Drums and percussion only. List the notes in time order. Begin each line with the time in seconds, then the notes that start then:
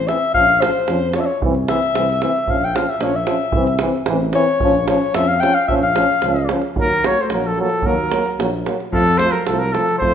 0.09 davul high
0.34 davul low
0.49 davul high
0.62 davul high
0.88 davul high
1.13 davul high
1.42 davul low
1.55 davul high
1.68 davul high
1.82 davul high
1.95 davul high
2.10 davul high
2.22 davul high
2.48 davul low
2.61 davul high
2.76 davul high
3.01 davul high
3.27 davul high
3.52 davul low
3.67 davul high
3.79 davul high
4.06 davul high
4.33 davul high
4.60 davul low
4.75 davul high
4.88 davul high
5.14 davul high
5.43 davul high
5.69 davul low
5.83 davul high
5.96 davul high
6.09 davul high
6.22 davul high
6.36 davul high
6.49 davul high
6.62 davul high
6.76 davul low
7.04 davul high
7.17 davul high
7.30 davul high
7.70 davul high
7.82 davul low
8.12 davul high
8.26 davul high
8.40 davul high
8.66 davul high
8.80 davul high
8.93 davul low
9.19 davul high
9.34 davul high
9.47 davul high
9.75 davul high
9.89 davul high
10.02 davul low